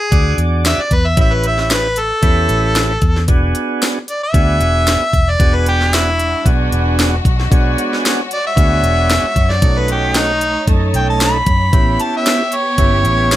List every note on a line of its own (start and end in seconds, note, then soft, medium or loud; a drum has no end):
0.00 0.38 G#4 medium
0.11 0.35 D2 loud
0.11 0.82 D4 medium
0.11 0.82 F#4 medium
0.11 0.82 G#4 medium
0.11 0.82 D5 medium
0.11 kick medium
0.11 closed hi-hat medium
0.38 0.73 E2 medium
0.38 closed hi-hat medium
0.65 0.83 E5 loud
0.65 snare loud
0.65 closed hi-hat medium
0.65 tambourine loud
0.78 0.96 D5 medium
0.78 muted fingered electric bass stroke soft
0.91 1.14 E2 loud
0.91 1.08 B4 medium
0.91 kick medium
0.91 closed hi-hat medium
1.07 1.18 E5 medium
1.17 2.11 A1 loud
1.17 1.87 C#4 medium
1.17 1.88 E4 medium
1.17 1.88 G4 medium
1.17 1.88 B4 medium
1.17 1.36 E5 medium
1.17 kick loud
1.17 closed hi-hat medium
1.35 1.45 B4 medium
1.44 1.58 E5 loud
1.44 closed hi-hat medium
1.58 1.75 E5 medium
1.58 snare soft
1.70 2.01 B4 loud
1.70 snare loud
1.70 closed hi-hat medium
1.70 tambourine loud
1.96 3.26 A4 loud
1.96 closed hi-hat medium
2.22 2.46 E2 medium
2.22 2.93 C#4 medium
2.22 2.93 E4 medium
2.22 2.93 G4 medium
2.22 2.93 B4 medium
2.22 kick loud
2.22 closed hi-hat medium
2.49 2.96 A1 loud
2.49 closed hi-hat medium
2.75 snare loud
2.75 closed hi-hat medium
2.75 tambourine loud
3.02 3.25 E2 medium
3.02 kick medium
3.02 closed hi-hat soft
3.16 snare soft
3.28 3.52 E1 medium
3.28 3.98 B3 medium
3.28 3.99 D4 medium
3.28 3.99 F#4 medium
3.28 3.99 G#4 loud
3.28 kick loud
3.28 closed hi-hat medium
3.55 closed hi-hat medium
3.82 snare loud
3.82 closed hi-hat medium
3.82 tambourine loud
4.08 4.22 D5 medium
4.08 closed hi-hat medium
4.23 5.31 E5 loud
4.33 4.58 D2 loud
4.33 5.04 B3 medium
4.33 5.04 D4 medium
4.33 5.04 F#4 medium
4.33 5.05 G#4 medium
4.33 kick medium
4.33 closed hi-hat medium
4.60 4.95 E1 medium
4.60 closed hi-hat medium
4.87 snare loud
4.87 closed hi-hat medium
4.87 tambourine loud
5.00 muted fingered electric bass stroke soft
5.13 5.37 E1 loud
5.13 kick medium
5.13 closed hi-hat medium
5.30 5.57 D5 loud
5.39 6.33 E1 medium
5.39 9.58 G#3 medium
5.39 6.10 B3 medium
5.39 7.49 D4 medium
5.39 6.10 D4 medium
5.39 9.58 F#4 loud
5.39 6.10 F#4 medium
5.39 6.10 G#4 medium
5.39 kick loud
5.39 closed hi-hat medium
5.55 5.66 B4 medium
5.66 5.96 G4 loud
5.66 closed hi-hat medium
5.81 snare soft
5.93 6.45 E4 loud
5.93 snare loud
5.93 closed hi-hat loud
5.93 tambourine loud
6.19 closed hi-hat medium
6.45 6.69 B1 medium
6.45 7.15 B3 medium
6.45 7.15 D4 medium
6.45 7.16 F#4 medium
6.45 7.16 G#4 medium
6.45 kick medium
6.45 closed hi-hat medium
6.72 7.18 E1 loud
6.72 closed hi-hat medium
6.99 snare loud
6.99 closed hi-hat medium
6.99 tambourine loud
7.25 7.48 B1 loud
7.25 kick medium
7.25 closed hi-hat medium
7.40 snare soft
7.51 7.75 B1 medium
7.51 8.21 B3 medium
7.51 8.21 D4 medium
7.51 8.21 F#4 medium
7.51 8.21 G#4 loud
7.51 13.36 C#5 medium
7.51 kick loud
7.51 closed hi-hat medium
7.78 closed hi-hat medium
7.93 snare soft
8.05 snare loud
8.05 closed hi-hat medium
8.05 tambourine loud
8.31 8.44 D5 loud
8.31 closed hi-hat medium
8.47 9.53 E5 loud
8.56 8.80 D2 medium
8.56 9.26 B3 medium
8.56 9.26 D4 medium
8.56 9.27 F#4 medium
8.56 9.27 G#4 medium
8.56 kick medium
8.56 closed hi-hat medium
8.83 9.18 E1 medium
8.83 closed hi-hat medium
9.10 snare loud
9.10 closed hi-hat medium
9.10 tambourine loud
9.23 muted fingered electric bass stroke soft
9.36 9.59 F#2 medium
9.36 kick medium
9.36 closed hi-hat medium
9.50 9.80 D5 medium
9.50 snare soft
9.62 10.55 B1 medium
9.62 10.32 A3 medium
9.62 11.71 A3 medium
9.62 10.32 C#4 medium
9.62 10.32 D#4 medium
9.62 11.71 D#4 medium
9.62 10.32 F#4 medium
9.62 kick loud
9.62 closed hi-hat medium
9.79 9.89 B4 medium
9.88 10.19 G4 loud
9.88 closed hi-hat medium
10.14 10.67 D#4 loud
10.14 snare loud
10.14 closed hi-hat medium
10.14 tambourine loud
10.41 closed hi-hat medium
10.67 10.91 F#2 medium
10.67 11.37 A3 medium
10.67 11.38 C#4 medium
10.67 11.38 D#4 medium
10.67 11.38 A4 medium
10.67 kick medium
10.67 closed hi-hat medium
10.93 11.40 B1 medium
10.93 11.08 G5 loud
10.93 closed hi-hat medium
11.10 11.21 A5 medium
11.20 12.04 B5 loud
11.20 snare loud
11.20 closed hi-hat medium
11.20 tambourine loud
11.46 11.70 F#2 loud
11.46 kick medium
11.46 closed hi-hat medium
11.72 11.96 A1 medium
11.72 12.43 B3 medium
11.72 13.36 B3 medium
11.72 12.43 C#4 medium
11.72 12.43 E4 medium
11.72 13.36 G4 loud
11.72 12.43 G4 medium
11.72 kick loud
11.72 closed hi-hat medium
12.00 12.13 A5 medium
12.00 closed hi-hat medium
12.17 12.57 E5 loud
12.26 snare loud
12.26 closed hi-hat loud
12.26 tambourine loud
12.52 13.36 C#5 loud
12.52 closed hi-hat medium
12.78 13.01 G1 loud
12.78 13.36 B3 medium
12.78 13.36 C#4 medium
12.78 13.36 E4 medium
12.78 13.36 G4 medium
12.78 kick loud
12.78 closed hi-hat medium
13.04 13.36 A1 loud
13.04 closed hi-hat medium
13.31 snare loud
13.31 closed hi-hat medium
13.31 tambourine loud